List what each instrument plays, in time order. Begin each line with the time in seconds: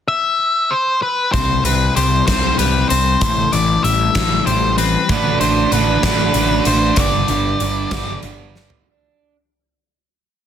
0.08 lead electric guitar E5
0.71 lead electric guitar C5
1.02 lead electric guitar B4
1.32 picked electric bass C2, clean electric guitar C3, lead electric guitar C5, kick, closed hi-hat
1.64 picked electric bass C2, clean electric guitar C3, lead electric guitar B4, closed hi-hat
1.96 picked electric bass C2, clean electric guitar G3, lead electric guitar C5, closed hi-hat
2.27 picked electric bass C2, clean electric guitar C3, lead electric guitar C5, kick, snare, closed hi-hat
2.59 picked electric bass C2, clean electric guitar G3, lead electric guitar B4, closed hi-hat
2.89 picked electric bass C2, clean electric guitar C4, lead electric guitar C5, closed hi-hat
3.21 picked electric bass A1, clean electric guitar A2, kick, closed hi-hat
3.52 picked electric bass A1, clean electric guitar E3, lead electric guitar D5, closed hi-hat
3.84 picked electric bass A1, clean electric guitar G3, lead electric guitar E5, closed hi-hat
4.15 picked electric bass A1, clean electric guitar E3, kick, snare, closed hi-hat
4.46 picked electric bass A1, clean electric guitar G3, lead electric guitar C5, closed hi-hat
4.78 clean electric guitar C4, lead electric guitar B4, closed hi-hat
5.09 picked electric bass A1, distorted electric guitar D3 A3 D4, kick, closed hi-hat
5.40 picked electric bass A1, distorted electric guitar D3 A3 D4, lead electric guitar C5, closed hi-hat
5.72 picked electric bass A1, distorted electric guitar D3 A3 D4, lead electric guitar B4, closed hi-hat
6.03 picked electric bass A1, distorted electric guitar D3 A3 D4, kick, snare, closed hi-hat
6.34 picked electric bass A1, distorted electric guitar D3 A3 D4, closed hi-hat
6.65 picked electric bass A1, distorted electric guitar D3 A3 D4, lead electric guitar C5, closed hi-hat
6.96 picked electric bass G1, distorted electric guitar G2 D3 G3, lead electric guitar D5, kick, closed hi-hat
7.28 picked electric bass G1, distorted electric guitar G2 D3 G3, closed hi-hat
7.60 picked electric bass G1, distorted electric guitar G2 D3 G3, closed hi-hat
7.91 picked electric bass G1, distorted electric guitar G2 D3 G3, kick, snare, closed hi-hat
8.23 picked electric bass G1, distorted electric guitar G2 D3 G3, closed hi-hat
8.55 distorted electric guitar G2 D3 G3, snare
8.70 floor tom